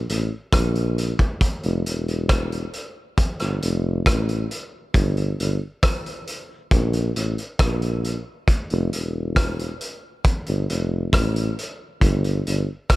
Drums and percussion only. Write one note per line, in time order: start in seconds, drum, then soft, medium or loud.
0.09 closed hi-hat medium
0.53 kick loud
0.53 cross-stick loud
0.53 closed hi-hat loud
0.75 closed hi-hat soft
0.98 closed hi-hat medium
1.19 kick medium
1.19 closed hi-hat soft
1.41 kick medium
1.41 closed hi-hat medium
1.63 closed hi-hat soft
1.86 closed hi-hat medium
2.08 closed hi-hat soft
2.29 kick loud
2.29 cross-stick loud
2.29 closed hi-hat medium
2.52 closed hi-hat soft
2.73 closed hi-hat medium
3.18 kick loud
3.18 closed hi-hat medium
3.39 cross-stick medium
3.39 closed hi-hat soft
3.62 closed hi-hat medium
4.06 kick loud
4.06 cross-stick loud
4.06 closed hi-hat loud
4.29 closed hi-hat medium
4.51 closed hi-hat medium
4.94 kick medium
4.94 closed hi-hat medium
5.17 closed hi-hat soft
5.40 closed hi-hat medium
5.83 kick loud
5.83 cross-stick loud
5.83 closed hi-hat medium
6.06 closed hi-hat soft
6.27 closed hi-hat medium
6.71 kick loud
6.71 closed hi-hat medium
6.93 closed hi-hat medium
7.16 closed hi-hat medium
7.38 closed hi-hat soft
7.59 kick loud
7.59 cross-stick loud
7.59 closed hi-hat loud
7.82 closed hi-hat medium
8.04 closed hi-hat medium
8.48 kick loud
8.48 closed hi-hat medium
8.70 closed hi-hat soft
8.93 closed hi-hat medium
9.36 kick loud
9.36 cross-stick loud
9.36 closed hi-hat medium
9.59 closed hi-hat soft
9.81 closed hi-hat medium
10.25 kick loud
10.25 closed hi-hat medium
10.46 closed hi-hat medium
10.70 closed hi-hat medium
11.13 kick loud
11.13 cross-stick loud
11.13 closed hi-hat loud
11.36 closed hi-hat medium
11.59 closed hi-hat medium
12.01 kick medium
12.01 closed hi-hat medium
12.24 closed hi-hat soft
12.47 closed hi-hat medium
12.90 kick loud
12.90 cross-stick loud
12.90 closed hi-hat medium